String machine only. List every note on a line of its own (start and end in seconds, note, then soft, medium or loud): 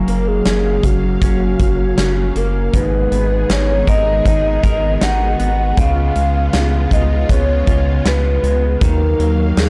0.00 2.71 C#3 medium
0.00 2.70 F#3 medium
0.00 2.70 A#3 medium
0.00 2.70 F5 medium
2.74 5.74 D#3 medium
2.74 5.75 G#3 medium
2.74 8.77 B3 medium
2.74 5.74 G#4 medium
5.77 8.78 C#3 medium
5.77 8.78 G#3 medium
5.77 8.78 F4 medium
8.81 9.69 D#3 medium
8.81 9.69 F#3 medium
8.81 9.69 A#3 medium
8.81 9.69 F5 medium